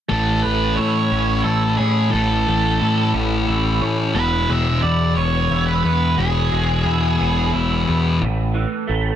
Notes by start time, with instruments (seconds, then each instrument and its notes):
0.09 picked electric bass A1, distorted electric guitar A2 E3 A3, clean electric guitar A2, lead electric guitar A4
0.42 picked electric bass A1, clean electric guitar A3, lead electric guitar B4
0.76 picked electric bass A2, clean electric guitar E4, lead electric guitar C#5
1.10 picked electric bass A1, clean electric guitar C#4
1.44 picked electric bass A1, clean electric guitar E4, lead electric guitar A4
1.77 picked electric bass A2, clean electric guitar C#4, lead electric guitar G#4
2.10 picked electric bass A1, distorted electric guitar A2 E3, clean electric guitar A2, lead electric guitar A4
2.14 distorted electric guitar A3
2.46 picked electric bass A1, clean electric guitar A3
2.79 picked electric bass A2, clean electric guitar E4
3.13 picked electric bass A1, clean electric guitar C#4
3.47 picked electric bass A1, clean electric guitar E4
3.81 picked electric bass A2, clean electric guitar C#4
4.14 picked electric bass E1, distorted electric guitar E2 B2 E3, clean electric guitar E2, lead electric guitar B4
4.49 picked electric bass E1, clean electric guitar G#3, lead electric guitar E5
4.82 picked electric bass E2, clean electric guitar E4, lead electric guitar D5
5.15 picked electric bass E1, clean electric guitar B3, lead electric guitar C#5
5.51 picked electric bass E1, clean electric guitar E4
5.67 lead electric guitar B4
5.84 picked electric bass E2, clean electric guitar B3, lead electric guitar B4
6.17 picked electric bass E1, distorted electric guitar E2 B2, clean electric guitar E2, lead electric guitar G#4
6.21 distorted electric guitar E3
6.52 picked electric bass E1, clean electric guitar G#3
6.85 picked electric bass E2, clean electric guitar E4
7.19 picked electric bass E1, clean electric guitar B3
7.53 picked electric bass E1, clean electric guitar E4
7.87 picked electric bass E2, clean electric guitar B3
8.20 picked electric bass A1, clean electric guitar A2
8.54 clean electric guitar E3
8.88 picked electric bass A1, clean electric guitar A3